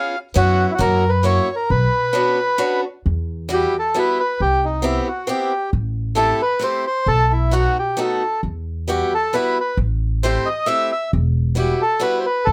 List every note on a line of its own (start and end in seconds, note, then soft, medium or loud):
0.00 0.14 B3 medium
0.00 0.15 C#4 medium
0.00 0.15 F4 medium
0.00 0.15 G#4 medium
0.00 0.18 F5 medium
0.34 0.64 F#2 medium
0.34 0.71 B3 medium
0.34 0.71 C#4 medium
0.34 0.72 E4 medium
0.34 0.72 F#4 medium
0.34 0.66 F#4 loud
0.68 0.74 E4 medium
0.68 0.71 F#4 medium
0.74 0.80 F#4 medium
0.78 1.37 F#2 medium
0.78 1.03 A#3 medium
0.78 1.03 C#4 medium
0.78 1.04 E4 soft
0.78 1.04 F#4 medium
0.78 1.11 A#4 loud
1.09 1.24 B4 medium
1.23 1.48 A#3 soft
1.23 1.48 C#4 medium
1.23 1.48 E4 medium
1.23 1.49 F#4 medium
1.23 1.55 C#5 medium
1.56 1.70 A#4 medium
1.70 1.85 B1 medium
1.70 2.81 B4 loud
2.13 2.38 B3 medium
2.13 2.38 C#4 medium
2.13 2.38 D4 medium
2.13 2.39 F#4 medium
2.58 2.83 B3 medium
2.58 2.83 C#4 medium
2.58 2.83 D4 medium
2.58 2.84 F#4 medium
3.06 3.64 E2 medium
3.49 3.74 G3 medium
3.49 3.74 B3 soft
3.49 3.74 E4 medium
3.49 3.74 F#4 medium
3.53 3.77 G4 loud
3.79 3.98 A4 medium
3.94 4.19 G3 medium
3.94 4.19 B3 soft
3.94 4.20 E4 soft
3.94 4.20 F#4 medium
3.94 4.18 B4 medium
4.20 4.41 B4 medium
4.40 4.98 C2 medium
4.40 4.65 G4 loud
4.65 4.85 D#4 medium
4.82 5.07 B3 medium
4.82 5.07 C4 medium
4.82 5.07 E4 medium
4.82 5.09 E4 medium
4.82 5.08 G4 medium
5.08 5.29 F#4 medium
5.27 5.51 B3 medium
5.27 5.52 C4 medium
5.27 5.52 E4 soft
5.27 5.52 G4 medium
5.27 5.70 G4 medium
5.73 6.31 A1 medium
6.15 6.40 A3 medium
6.15 6.40 C4 medium
6.15 6.41 E4 medium
6.15 6.41 G4 medium
6.15 6.41 A4 loud
6.42 6.63 B4 medium
6.59 6.85 A3 medium
6.59 6.85 C4 soft
6.59 6.85 E4 soft
6.59 6.86 G4 medium
6.64 6.85 C5 medium
6.87 7.08 C5 medium
7.06 7.65 B1 medium
7.06 7.32 A4 loud
7.32 7.53 E4 medium
7.51 7.76 A3 medium
7.51 7.76 B3 soft
7.51 7.77 D#4 medium
7.51 7.77 F#4 medium
7.79 7.99 G4 medium
7.97 8.22 A3 medium
7.97 8.22 B3 medium
7.97 8.22 D#4 soft
7.97 8.22 F#4 medium
7.97 8.41 A4 medium
8.43 9.01 E2 medium
8.88 9.12 G3 medium
8.88 9.12 B3 medium
8.88 9.13 E4 soft
8.88 9.13 F#4 medium
8.88 9.13 G4 medium
9.14 9.35 A4 medium
9.33 9.57 G3 soft
9.33 9.57 B3 medium
9.33 9.57 E4 soft
9.33 9.58 F#4 medium
9.33 9.58 B4 medium
9.60 9.78 B4 medium
9.77 10.36 A1 medium
10.23 10.47 A3 medium
10.23 10.47 C4 medium
10.23 10.48 E4 medium
10.23 10.48 G4 medium
10.23 10.48 C5 medium
10.46 10.68 D#5 medium
10.66 10.91 A3 medium
10.66 10.91 C4 medium
10.66 10.91 E4 soft
10.66 10.92 G4 medium
10.66 10.91 E5 loud
10.92 11.11 E5 medium
11.13 11.71 E1 medium
11.55 11.80 G3 medium
11.55 11.80 B3 soft
11.55 11.81 E4 soft
11.55 11.81 F#4 medium
11.55 11.82 G4 medium
11.82 12.03 A4 medium
12.00 12.25 G3 medium
12.00 12.25 B3 medium
12.00 12.25 E4 soft
12.00 12.25 F#4 medium
12.00 12.19 B4 loud
12.19 12.26 C5 medium
12.26 12.47 B4 medium
12.45 12.52 B1 medium
12.45 12.52 A4 loud